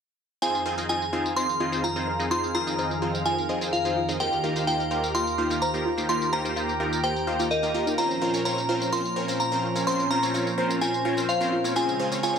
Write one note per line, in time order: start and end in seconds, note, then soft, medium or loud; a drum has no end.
0.42 4.16 F2 medium
0.42 7.94 D#3 medium
0.42 0.63 C4 medium
0.42 0.63 D#4 medium
0.42 0.53 F4 medium
0.42 0.63 F4 medium
0.42 4.16 G#4 medium
0.42 0.63 G#4 medium
0.42 12.39 A#4 medium
0.42 0.63 C5 loud
0.42 4.16 F5 medium
0.42 0.88 G#5 medium
0.42 12.39 A#5 medium
0.42 tambourine soft
0.55 tambourine soft
0.66 0.76 C4 medium
0.66 0.76 D#4 medium
0.66 0.76 F4 medium
0.66 0.76 G#4 medium
0.66 0.76 C5 loud
0.66 0.77 C5 medium
0.78 0.87 C4 medium
0.78 0.87 D#4 medium
0.78 0.87 F4 medium
0.78 0.87 G#4 medium
0.78 0.87 D#5 medium
0.78 tambourine medium
0.89 1.05 C4 medium
0.89 1.05 D#4 medium
0.89 1.05 F4 medium
0.89 0.97 F4 medium
0.89 1.05 G#4 medium
0.89 1.05 D#5 medium
0.89 1.38 G#5 medium
0.89 tambourine soft
1.02 tambourine soft
1.13 1.34 C4 medium
1.13 1.34 D#4 medium
1.13 1.34 F4 medium
1.13 1.24 F4 medium
1.13 1.34 G#4 medium
1.13 1.34 C5 medium
1.26 tambourine medium
1.36 1.47 C4 medium
1.36 1.47 D#4 medium
1.36 1.47 F4 medium
1.36 1.47 G#4 medium
1.36 1.47 C5 medium
1.36 1.48 C5 medium
1.36 1.85 C6 loud
1.36 tambourine soft
1.49 tambourine soft
1.60 1.70 C4 medium
1.60 1.70 D#4 medium
1.60 1.70 F4 medium
1.60 1.68 F4 medium
1.60 1.70 G#4 medium
1.60 1.70 D#5 medium
1.72 1.88 C4 medium
1.72 1.88 D#4 medium
1.72 1.88 F4 medium
1.72 1.88 G#4 medium
1.72 1.88 C5 medium
1.72 tambourine medium
1.84 1.95 F4 medium
1.84 2.32 A#5 medium
1.84 tambourine medium
1.96 2.11 C4 medium
1.96 2.11 D#4 medium
1.96 2.11 F4 medium
1.96 2.11 G#4 medium
1.96 2.11 C5 medium
1.96 tambourine soft
2.07 2.18 C5 medium
2.19 2.29 C4 medium
2.19 2.29 D#4 medium
2.19 2.29 F4 medium
2.19 2.29 G#4 medium
2.19 2.29 D#5 medium
2.19 tambourine medium
2.31 2.52 C4 medium
2.31 2.52 D#4 medium
2.31 2.52 F4 medium
2.31 2.38 F4 medium
2.31 2.52 G#4 medium
2.31 2.52 C5 loud
2.31 2.53 C6 loud
2.31 tambourine soft
2.44 tambourine soft
2.55 2.65 C4 medium
2.55 2.65 D#4 medium
2.55 2.65 F4 medium
2.55 2.66 F4 medium
2.55 2.65 G#4 medium
2.55 2.65 C5 loud
2.55 3.28 A#5 loud
2.67 2.76 C4 medium
2.67 2.76 D#4 medium
2.67 2.76 F4 medium
2.67 2.76 G#4 medium
2.67 2.76 D#5 medium
2.67 tambourine medium
2.78 2.94 C4 medium
2.78 2.94 D#4 medium
2.78 2.94 F4 medium
2.78 2.94 G#4 medium
2.78 2.89 C5 medium
2.78 2.94 D#5 medium
2.78 tambourine soft
2.91 tambourine soft
3.02 3.23 C4 medium
3.02 3.23 D#4 medium
3.02 3.09 F4 medium
3.02 3.23 F4 medium
3.02 3.23 G#4 medium
3.02 3.23 C5 loud
3.15 tambourine medium
3.25 3.36 C4 medium
3.25 3.36 D#4 medium
3.25 3.36 F4 medium
3.25 3.37 F4 medium
3.25 3.36 G#4 medium
3.25 3.36 C5 medium
3.25 3.74 G#5 medium
3.25 tambourine soft
3.38 tambourine soft
3.49 3.59 C4 medium
3.49 3.59 D#4 medium
3.49 3.59 F4 medium
3.49 3.59 G#4 medium
3.49 3.60 C5 medium
3.49 3.59 D#5 medium
3.61 3.77 C4 medium
3.61 3.77 D#4 medium
3.61 3.77 F4 medium
3.61 3.77 G#4 medium
3.61 3.77 C5 medium
3.61 tambourine medium
3.73 3.80 F4 medium
3.73 4.06 F5 medium
3.73 tambourine medium
3.85 4.00 C4 medium
3.85 4.00 D#4 medium
3.85 4.00 F4 medium
3.85 4.00 G#4 medium
3.85 4.00 C5 medium
3.85 tambourine soft
3.96 4.07 F4 medium
4.09 4.18 C4 medium
4.09 4.18 D#4 medium
4.09 4.18 F4 medium
4.09 4.18 G#4 medium
4.09 4.18 D#5 medium
4.09 tambourine medium
4.20 7.94 D#2 medium
4.20 4.41 A#3 medium
4.20 4.41 D#4 medium
4.20 4.41 F4 medium
4.20 4.41 G4 medium
4.20 7.94 G4 medium
4.20 4.41 A#4 loud
4.20 4.31 C5 medium
4.20 6.07 F5 medium
4.20 4.66 G5 loud
4.20 tambourine soft
4.33 tambourine soft
4.44 4.54 A#3 medium
4.44 4.54 D#4 medium
4.44 4.54 F4 medium
4.44 4.51 F4 medium
4.44 4.54 G4 medium
4.44 4.54 A#4 loud
4.56 4.65 A#3 medium
4.56 4.65 D#4 medium
4.56 4.65 F4 medium
4.56 4.65 G4 medium
4.56 4.65 C5 medium
4.56 tambourine medium
4.67 4.83 A#3 medium
4.67 4.83 D#4 medium
4.67 4.83 F4 medium
4.67 4.78 F4 medium
4.67 4.83 G4 medium
4.67 4.83 C5 medium
4.67 5.16 G5 medium
4.67 tambourine soft
4.80 tambourine soft
4.91 5.12 A#3 medium
4.91 5.12 D#4 medium
4.91 5.12 F4 medium
4.91 5.12 G4 medium
4.91 5.12 A#4 medium
4.91 5.02 C5 medium
5.04 tambourine medium
5.15 5.25 A#3 medium
5.15 5.25 D#4 medium
5.15 5.25 F4 medium
5.15 5.22 F4 medium
5.15 5.25 G4 medium
5.15 5.25 A#4 medium
5.15 5.59 C6 loud
5.15 tambourine soft
5.27 tambourine soft
5.38 5.49 A#3 medium
5.38 5.49 D#4 medium
5.38 5.49 F4 medium
5.38 5.49 G4 medium
5.38 5.49 C5 medium
5.50 5.66 A#3 medium
5.50 5.66 D#4 medium
5.50 5.66 F4 medium
5.50 5.66 G4 medium
5.50 5.66 A#4 medium
5.50 tambourine medium
5.62 5.73 C5 medium
5.62 6.10 A#5 medium
5.62 tambourine soft
5.74 5.89 A#3 medium
5.74 5.89 D#4 medium
5.74 5.89 F4 medium
5.74 5.89 G4 medium
5.74 5.89 A#4 medium
5.74 tambourine soft
5.85 5.93 F4 medium
5.98 6.07 A#3 medium
5.98 6.07 D#4 medium
5.98 6.07 F4 medium
5.98 6.07 G4 medium
5.98 6.07 C5 medium
5.98 tambourine medium
6.09 6.30 A#3 loud
6.09 6.30 D#4 medium
6.09 6.30 F4 medium
6.09 6.20 F4 medium
6.09 6.30 G4 medium
6.09 6.30 A#4 loud
6.09 7.96 G5 medium
6.09 6.33 C6 loud
6.09 tambourine soft
6.22 tambourine soft
6.33 6.43 A#3 medium
6.33 6.43 D#4 medium
6.33 6.43 F4 medium
6.33 6.43 G4 medium
6.33 6.43 A#4 loud
6.33 6.44 C5 medium
6.33 7.00 A#5 loud
6.45 6.54 A#3 medium
6.45 6.54 D#4 medium
6.45 6.54 F4 medium
6.45 6.54 G4 medium
6.45 6.54 C5 medium
6.45 tambourine medium
6.56 6.72 A#3 medium
6.56 6.72 D#4 medium
6.56 6.72 F4 medium
6.56 6.64 F4 medium
6.56 6.72 G4 medium
6.56 6.72 C5 medium
6.56 tambourine medium
6.69 tambourine soft
6.80 7.01 A#3 medium
6.80 7.01 D#4 medium
6.80 6.91 F4 medium
6.80 7.01 F4 medium
6.80 7.01 G4 medium
6.80 7.01 A#4 loud
6.93 tambourine medium
7.04 7.14 A#3 medium
7.04 7.14 D#4 medium
7.04 7.14 F4 medium
7.04 7.14 G4 medium
7.04 7.14 A#4 medium
7.04 7.15 C5 medium
7.04 7.47 G5 medium
7.04 tambourine soft
7.16 tambourine soft
7.27 7.36 A#3 medium
7.27 7.36 D#4 medium
7.27 7.36 F4 medium
7.27 7.36 G4 medium
7.27 7.36 C5 loud
7.27 7.35 F5 medium
7.39 7.49 A#3 medium
7.39 7.49 D#4 medium
7.39 7.49 F4 medium
7.39 7.43 F4 medium
7.39 7.49 G4 medium
7.39 7.49 C5 medium
7.39 tambourine medium
7.51 7.62 A#4 medium
7.51 7.84 D#5 medium
7.51 tambourine medium
7.63 7.72 A#3 medium
7.63 7.72 D#4 medium
7.63 7.72 F4 medium
7.63 7.72 G4 medium
7.63 7.72 A#4 medium
7.63 tambourine soft
7.74 7.95 A#3 medium
7.74 7.95 D#4 medium
7.74 7.95 F4 medium
7.74 7.85 F4 medium
7.74 7.95 G4 medium
7.74 7.95 A#4 medium
7.87 7.91 D#4 medium
7.87 tambourine medium
7.98 11.72 A#2 medium
7.98 11.72 F3 medium
7.98 8.19 C4 medium
7.98 8.19 C#4 medium
7.98 11.72 C#4 medium
7.98 8.19 F4 medium
7.98 8.05 F4 medium
7.98 8.19 A#4 medium
7.98 8.19 C5 loud
7.98 12.39 C5 medium
7.98 8.42 A#5 loud
7.98 tambourine medium
8.11 tambourine soft
8.22 8.32 C4 medium
8.22 8.32 C#4 medium
8.22 8.32 F4 medium
8.22 8.33 F4 medium
8.22 8.32 A#4 medium
8.22 8.32 C5 loud
8.34 8.43 C4 medium
8.34 8.42 C#4 medium
8.34 8.42 F4 medium
8.34 8.42 A#4 medium
8.34 8.42 C#5 medium
8.34 tambourine medium
8.45 8.61 C4 medium
8.45 8.61 C#4 medium
8.45 8.61 F4 medium
8.45 8.61 A#4 medium
8.45 8.56 C5 medium
8.45 8.61 C#5 medium
8.45 8.94 A#5 medium
8.45 tambourine medium
8.58 tambourine soft
8.69 8.90 C4 medium
8.69 8.90 C#4 medium
8.69 8.90 F4 medium
8.69 8.76 F4 medium
8.69 8.90 A#4 medium
8.69 8.90 C5 medium
8.82 tambourine medium
8.92 9.03 C4 medium
8.92 9.03 C#4 medium
8.92 9.03 F4 medium
8.92 9.04 F4 medium
8.92 9.03 A#4 medium
8.92 9.03 C5 medium
8.92 9.41 C6 medium
8.92 tambourine soft
9.05 tambourine soft
9.16 9.26 C4 medium
9.16 9.26 C#4 medium
9.16 9.26 F4 medium
9.16 9.26 A#4 medium
9.16 9.27 C5 medium
9.16 9.26 C#5 medium
9.28 9.44 C4 medium
9.28 9.44 C#4 medium
9.28 9.44 F4 medium
9.28 9.44 A#4 medium
9.28 9.44 C5 medium
9.28 tambourine medium
9.40 9.47 F4 medium
9.40 9.84 A#5 medium
9.40 tambourine medium
9.52 9.67 C4 medium
9.52 9.67 C#4 medium
9.52 9.67 F4 medium
9.52 9.67 A#4 medium
9.52 9.67 C5 medium
9.52 tambourine soft
9.63 9.74 F4 medium
9.75 9.85 C4 medium
9.75 9.85 C#4 medium
9.75 9.85 F4 medium
9.75 9.85 A#4 medium
9.75 9.85 C#5 medium
9.75 tambourine medium
9.87 10.08 C4 medium
9.87 10.08 C#4 medium
9.87 10.08 F4 medium
9.87 10.08 A#4 medium
9.87 10.08 C5 loud
9.87 9.98 C5 medium
9.87 10.09 C6 loud
9.87 tambourine medium
10.00 tambourine soft
10.10 10.21 C4 medium
10.10 10.21 C#4 medium
10.10 10.21 F4 medium
10.10 10.18 F4 medium
10.10 10.21 A#4 medium
10.10 10.21 C5 loud
10.10 10.84 A#5 medium
10.23 10.31 C4 medium
10.23 10.31 C#4 medium
10.23 10.31 F4 medium
10.23 10.31 A#4 medium
10.23 10.31 C#5 medium
10.23 tambourine medium
10.34 10.50 C4 medium
10.34 10.50 C#4 medium
10.34 10.50 F4 medium
10.34 10.45 F4 medium
10.34 10.50 A#4 medium
10.34 10.50 C#5 medium
10.34 tambourine medium
10.47 tambourine soft
10.58 10.79 C4 medium
10.58 10.79 C#4 medium
10.58 10.79 F4 medium
10.58 10.79 A#4 medium
10.58 10.79 C5 loud
10.58 10.69 C5 medium
10.70 tambourine medium
10.81 10.92 C4 medium
10.81 10.92 C#4 medium
10.81 10.92 F4 medium
10.81 10.89 F4 medium
10.81 10.92 A#4 medium
10.81 10.92 C5 medium
10.81 11.25 G#5 medium
10.81 tambourine medium
10.94 tambourine soft
11.05 11.15 C4 medium
11.05 11.15 C#4 medium
11.05 11.15 F4 medium
11.05 11.16 F4 medium
11.05 11.15 A#4 medium
11.05 11.15 C#5 medium
11.17 11.33 C4 medium
11.17 11.33 C#4 medium
11.17 11.33 F4 medium
11.17 11.33 A#4 medium
11.17 11.33 C5 medium
11.17 tambourine medium
11.29 11.40 C5 medium
11.29 11.62 F5 medium
11.29 tambourine medium
11.41 11.56 C4 medium
11.41 11.56 C#4 medium
11.41 11.56 F4 medium
11.41 11.56 A#4 medium
11.41 11.56 C5 medium
11.41 tambourine soft
11.52 11.60 F4 medium
11.64 11.74 C4 medium
11.64 11.74 C#4 medium
11.64 11.74 F4 medium
11.64 11.74 A#4 medium
11.64 11.74 C#5 medium
11.64 tambourine medium
11.76 12.39 C#3 medium
11.76 12.39 G#3 medium
11.76 11.97 C4 medium
11.76 11.97 C#4 medium
11.76 11.97 F4 medium
11.76 11.87 F4 medium
11.76 12.39 F4 medium
11.76 11.97 G#4 medium
11.76 11.97 C5 loud
11.76 12.22 G#5 medium
11.76 tambourine medium
11.89 tambourine soft
11.99 12.10 C4 medium
11.99 12.10 C#4 medium
11.99 12.10 F4 medium
11.99 12.10 G#4 medium
11.99 12.10 C5 loud
11.99 12.11 C5 medium
12.12 12.20 C4 medium
12.12 12.20 C#4 medium
12.12 12.20 F4 medium
12.12 12.20 G#4 medium
12.12 12.20 C#5 medium
12.12 tambourine medium
12.23 12.39 C4 medium
12.23 12.39 C#4 medium
12.23 12.39 F4 medium
12.23 12.30 F4 medium
12.23 12.39 G#4 medium
12.23 12.39 C#5 medium
12.23 12.39 G#5 medium
12.23 tambourine medium